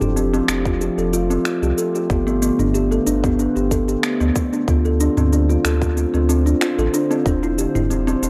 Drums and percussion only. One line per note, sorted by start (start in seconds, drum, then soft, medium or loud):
0.01 mid tom medium
0.01 shaker soft
0.17 shaker soft
0.34 shaker soft
0.48 finger snap medium
0.48 shaker medium
0.65 kick loud
0.65 shaker soft
0.81 shaker soft
0.98 shaker soft
1.14 shaker medium
1.31 shaker soft
1.45 finger snap medium
1.45 shaker soft
1.63 shaker soft
1.78 shaker medium
1.95 shaker soft
2.10 kick loud
2.10 shaker soft
2.27 shaker soft
2.42 shaker medium
2.59 mid tom medium
2.59 shaker soft
2.75 shaker soft
2.92 shaker soft
3.07 shaker medium
3.24 kick loud
3.24 mid tom medium
3.24 shaker soft
3.39 shaker soft
3.56 shaker soft
3.71 kick medium
3.71 shaker medium
3.89 shaker soft
4.03 finger snap medium
4.03 shaker soft
4.21 shaker soft
4.36 kick loud
4.36 shaker medium
4.53 shaker soft
4.68 kick loud
4.68 shaker soft
4.85 shaker soft
5.00 shaker medium
5.17 mid tom medium
5.17 shaker soft
5.33 shaker soft
5.50 shaker soft
5.65 finger snap medium
5.65 shaker medium
5.82 kick medium
5.82 shaker soft
5.97 shaker soft
6.14 shaker soft
6.30 shaker medium
6.47 shaker soft
6.61 finger snap medium
6.61 shaker soft
6.79 shaker soft
6.94 shaker medium
7.11 shaker soft
7.26 kick loud
7.26 shaker soft
7.43 shaker soft
7.59 shaker medium
7.75 mid tom medium
7.75 shaker soft
7.91 shaker soft
8.08 shaker soft
8.23 shaker medium